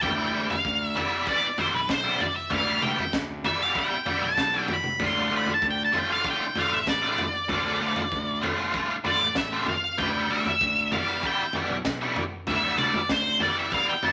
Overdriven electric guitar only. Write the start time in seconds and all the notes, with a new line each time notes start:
0.02 E3 G3 B3 E4
0.19 E3 G3 B3 E4
0.33 E3 G3 B3 E4
0.95 E3 G3 B3 E4
1.12 E3 G3 B3 E4
1.27 E3 G3 B3 E4
1.58 E3 G3 B3 E4
2.04 E3 G3 B3 E4
2.50 E3 G3 B3 E4
2.68 E3 G3 B3 E4
2.82 E3 G3 B3 E4
3.45 E3 G3 B3 E4
3.61 E3 G3 B3 E4
3.75 E3 G3 B3 E4
4.06 E3 G3 B3 E4
4.54 E3 G3 B3 E4
5.00 A2 D3 A3 F4
5.16 A2 D3 A3 F4
5.30 A2 D3 A3 F4
5.93 A2 D3 A3 F4
6.09 A2 D3 A3 F4
6.25 A2 D3 A3 F4
6.57 A2 D3 A3 F4
7.02 A2 D3 A3 F4
7.48 A2 D3 A3 F4
7.66 A2 D3 A3 F4
7.81 A2 D3 A3 F4
8.41 A2 D3 A3 F4
8.57 A2 D3 A3 F4
8.74 A2 D3 A3 F4
9.04 A2 D3 A3 F4
9.53 A2 D3 A3 F4
9.98 E3 G3 B3 E4
10.14 E3 G3 B3 E4
10.30 E3 G3 B3 E4
10.92 E3 G3 B3 E4
11.08 E3 G3 B3 E4
11.23 E3 G3 B3 E4
11.55 E3 G3 B3 E4
12.01 E3 G3 B3 E4
12.50 E3 G3 B3 E4
12.63 E3 G3 B3 E4
12.77 E3 G3 B3 E4
13.41 E3 G3 B3 E4
13.56 E3 G3 B3 E4
13.72 E3 G3 B3 E4
14.03 E3 G3 B3 E4